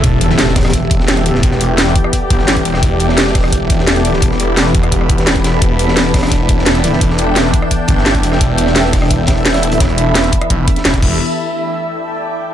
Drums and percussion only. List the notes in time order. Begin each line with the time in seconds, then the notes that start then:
0.04 kick, closed hi-hat
0.21 closed hi-hat
0.30 snare
0.38 snare, closed hi-hat
0.56 kick, cross-stick, snare, closed hi-hat
0.60 snare, closed hi-hat
0.65 cross-stick, snare, closed hi-hat
0.69 snare, closed hi-hat
0.73 kick, closed hi-hat
0.91 kick, closed hi-hat
1.00 snare
1.08 snare, closed hi-hat
1.17 cross-stick, closed hi-hat
1.26 closed hi-hat
1.35 snare
1.43 kick, closed hi-hat
1.51 snare
1.61 closed hi-hat
1.78 snare, closed hi-hat
1.95 kick, closed hi-hat
2.04 cross-stick
2.13 kick, closed hi-hat
2.30 kick, closed hi-hat
2.39 snare
2.47 snare, closed hi-hat
2.56 kick, closed hi-hat
2.65 closed hi-hat
2.74 cross-stick, snare
2.83 kick, closed hi-hat
3.00 closed hi-hat
3.09 snare
3.17 snare, closed hi-hat
3.35 kick, cross-stick, snare, closed hi-hat, open hi-hat
3.44 cross-stick
3.52 kick, closed hi-hat
3.70 kick, closed hi-hat
3.79 snare
3.87 snare, closed hi-hat
3.96 cross-stick, closed hi-hat
4.05 closed hi-hat
4.13 snare
4.22 kick, closed hi-hat
4.31 snare
4.39 closed hi-hat
4.57 snare, closed hi-hat
4.74 kick, closed hi-hat
4.83 cross-stick, closed hi-hat
4.92 kick, closed hi-hat
5.01 cross-stick
5.09 kick, closed hi-hat
5.18 snare, closed hi-hat
5.26 snare, closed hi-hat
5.35 kick, closed hi-hat
5.44 snare, closed hi-hat
5.62 kick, closed hi-hat
5.79 closed hi-hat
5.88 snare
5.97 snare, closed hi-hat
6.14 kick, cross-stick, snare, closed hi-hat
6.18 snare, closed hi-hat
6.22 cross-stick, snare, closed hi-hat
6.27 snare, closed hi-hat
6.32 kick, closed hi-hat
6.49 kick, closed hi-hat
6.59 snare
6.66 snare, closed hi-hat
6.75 cross-stick, closed hi-hat
6.84 closed hi-hat
6.93 snare
7.01 kick, closed hi-hat
7.10 snare
7.18 closed hi-hat
7.36 snare, closed hi-hat
7.54 kick, closed hi-hat
7.62 cross-stick
7.71 kick, closed hi-hat
7.88 kick, closed hi-hat
7.98 snare
8.05 snare, closed hi-hat
8.15 kick, closed hi-hat
8.23 closed hi-hat
8.32 cross-stick, snare
8.41 kick, closed hi-hat
8.58 closed hi-hat
8.67 snare
8.75 snare, closed hi-hat
8.93 kick, cross-stick, snare, closed hi-hat, open hi-hat
9.02 cross-stick
9.10 kick, closed hi-hat
9.27 kick, snare, closed hi-hat
9.37 closed hi-hat
9.46 snare, closed hi-hat
9.54 cross-stick, snare, closed hi-hat
9.63 closed hi-hat
9.72 closed hi-hat
9.80 kick, snare, closed hi-hat
9.89 closed hi-hat
9.98 closed hi-hat
10.15 snare, closed hi-hat
10.24 closed hi-hat
10.32 kick, closed hi-hat
10.41 cross-stick, closed hi-hat
10.50 kick, closed hi-hat
10.68 kick, closed hi-hat
10.76 snare, closed hi-hat
10.85 snare, closed hi-hat
10.94 kick, closed hi-hat
11.02 kick, crash